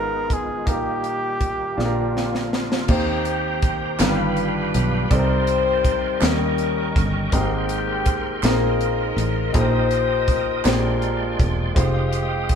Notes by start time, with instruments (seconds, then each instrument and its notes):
Already playing: fingered electric bass G#1, grand piano G#2 B3 D#4 F4 G#4 D#5, tonewheel organ D#3 G#3 B3 F4, trumpet A#4
0.30 trumpet G#4, kick, closed hi-hat
0.66 fingered electric bass A#1, grand piano A#2 D#4 F4 A#4, tonewheel organ G3 A#3 G4, trumpet G4, kick, closed hi-hat
0.74 grand piano G4
1.04 closed hi-hat
1.41 kick, closed hi-hat
1.77 fingered electric bass A#1, grand piano A#2 D4 F4 G#4, tonewheel organ D3 F3 F4, snare
1.85 grand piano A#4
2.17 snare
2.35 snare
2.53 snare
2.72 snare
2.88 fingered electric bass D#2, grand piano D#3 A#3 C4 D#4 G4 C5, horn section A#3 C4 G4, tonewheel organ G4 C5 G5 A#5, kick, crash
3.25 closed hi-hat
3.62 kick, closed hi-hat
3.99 fingered electric bass G1, grand piano G2 D#3 G3 D4 F4 A#4, horn section D4 F4 B4, tonewheel organ F5 B5, snare, clap, closed hi-hat
4.08 grand piano B4
4.37 closed hi-hat
4.74 fingered electric bass B1, closed hi-hat
5.10 fingered electric bass C2, grand piano C3 G3 C4 D#4 A4 D5, horn section D#4 G4 C5, tonewheel organ A#4 D5 C6, kick, closed hi-hat
5.19 grand piano A#4
5.47 closed hi-hat
5.85 kick, closed hi-hat
6.20 fingered electric bass D#2, grand piano D#3 G3 A#3 C#4 D#4 A#4, horn section C#4, tonewheel organ A#4 D#5 G5 C#6, snare, clap, closed hi-hat
6.24 horn section G4 A#4
6.58 closed hi-hat
6.96 fingered electric bass G1, kick, closed hi-hat
7.32 fingered electric bass G#1, grand piano G#2 G#3 C4 D#4 G4 A#4, horn section A#3 C4 G4, tonewheel organ G5 C6, kick, closed hi-hat
7.69 closed hi-hat
8.06 kick, closed hi-hat
8.43 fingered electric bass A#1, grand piano G#3 A#3 C4 D#4 F4 A#4, horn section D#4 F4 A#4, tonewheel organ D#5, snare, clap, closed hi-hat
8.81 closed hi-hat
9.17 fingered electric bass A1, closed hi-hat
9.53 fingered electric bass A#1, grand piano A#2 D#4 G4 A4, horn section D#4 G4 C5, tonewheel organ G5 D#6, kick, closed hi-hat
9.61 grand piano A#4
9.91 closed hi-hat
10.28 kick, closed hi-hat
10.64 fingered electric bass A#1, grand piano A#2 A#3 D4 G4 G#4 C5, tonewheel organ G#3 D5 C6, horn section D4 F4 A#4, snare, clap, closed hi-hat
11.02 closed hi-hat
11.39 fingered electric bass E1, kick, closed hi-hat
11.74 fingered electric bass F1, grand piano G#3 D#4 F4 G4 C5, tonewheel organ F5 D#6, kick, closed hi-hat
11.78 horn section C4 D#4 G4
12.13 closed hi-hat
12.49 kick, closed hi-hat